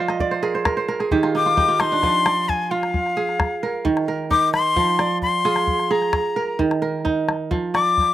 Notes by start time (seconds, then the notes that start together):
Already playing: F3 F4 C5 D5 F5 G5 G#5
0.08 D#5, calabash click
0.20 D5, calabash thump
0.31 C5
0.43 G#4 A#4
0.55 C5
0.65 A#4, calabash thump, calabash click
0.77 C5
0.88 A#4, calabash click
1.00 G#4, calabash click
1.11 D#3 G4, calabash thump
1.23 F4, calabash click
1.35 D#4 D6, calabash click
1.46 F4, calabash click
1.57 D#4 G4, calabash thump
1.68 F4
1.80 D#4 C6, calabash click
1.92 D4
2.03 F3, calabash thump, calabash click
2.26 D5, calabash click
2.49 G#5, calabash thump
2.71 F4 F5
2.83 calabash click
2.94 calabash thump
3.06 calabash click
3.17 G#4
3.29 calabash click
3.40 calabash thump, calabash click
3.63 A#4
3.85 D#3, calabash thump
3.97 calabash click
4.08 A#4, calabash click
4.31 D#4 D6, calabash thump, calabash click
4.54 C6, calabash click
4.76 F3, calabash thump, calabash click
4.99 D5, calabash click
5.22 C6, calabash thump
5.45 F4 G#4
5.56 calabash click
5.67 calabash thump
5.79 calabash click
5.91 G#4 A#5
6.02 calabash click
6.13 calabash thump, calabash click
6.36 A#4
6.59 D#3, calabash thump
6.71 calabash click
6.82 A#4, calabash click
7.05 D#4, calabash thump, calabash click
7.29 calabash click
7.51 F3, calabash thump, calabash click
7.74 D5 D6, calabash click
7.98 calabash thump